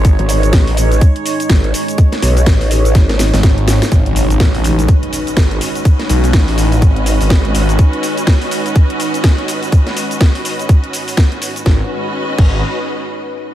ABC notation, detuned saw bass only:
X:1
M:4/4
L:1/16
Q:"Swing 16ths" 1/4=124
K:G#phr
V:1 name="Detuned saw bass" clef=bass
G,,, z12 z3 | z8 z3 G,,,4 z | G,,, G,,,3 A,,,4 z4 G,,,2 z2 | z2 B,,,2 A,,,4 G,,,3 G,,,2 G,,, G,,,2 |
z16 | z16 | G,,, z4 z G,,,2 z8 |]